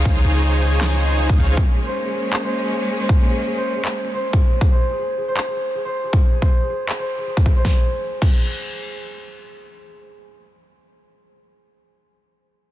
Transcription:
Already playing: C#3 D#4 F4
0.05 C#2 D#4 G#4 C5 C#5 F5, kick, closed hi-hat
0.24 C#2 D#4 G#4 C5 C#5 G#5, closed hi-hat
0.43 closed hi-hat
0.54 closed hi-hat
0.58 closed hi-hat
0.62 closed hi-hat
0.81 snare, clap, closed hi-hat
1.00 closed hi-hat
1.19 closed hi-hat
1.29 kick
1.38 C#2 D#4 G#4 C5 C#5 F5, closed hi-hat
1.57 G#3 A#3 C#4 G#4, kick
1.76 G#4
1.86 C5
2.06 G#4
2.14 G#4
2.33 G#4, clap
2.44 C5
2.62 G#4
2.71 G#4
2.90 G#4
3.00 C5
3.09 kick
3.19 G#4
3.28 G#4
3.47 G#4
3.57 C5
3.76 G#4
3.85 clap
4.04 G#4
4.14 C5
4.33 G#4, kick
4.42 G#4
4.61 G#4, kick
4.71 C5
4.90 G#4
4.99 G#4
5.18 G#4
5.28 C5
5.37 clap
5.47 G#4
5.56 G#4
5.75 G#4
5.85 C5
6.04 G#4
6.13 G#4, kick
6.32 G#4
6.42 C5, kick
6.61 G#4
6.70 G#4
6.89 G#4, clap
6.99 C5
7.18 G#4
7.27 G#4
7.37 kick
7.46 G#4, kick
7.56 C5
7.65 kick, snare
8.22 kick, crash

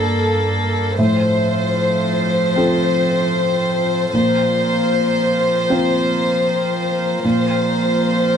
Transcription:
Already playing: G2 A#3 D4 A4
0.98 A2 F3 C4 F4 C5
2.56 C4 F4 A4
4.12 A#2 F3 C4 F4 A#4 C5
5.70 C4 F4 C5
7.23 A#2 F3 C4 F4 A#4 C5

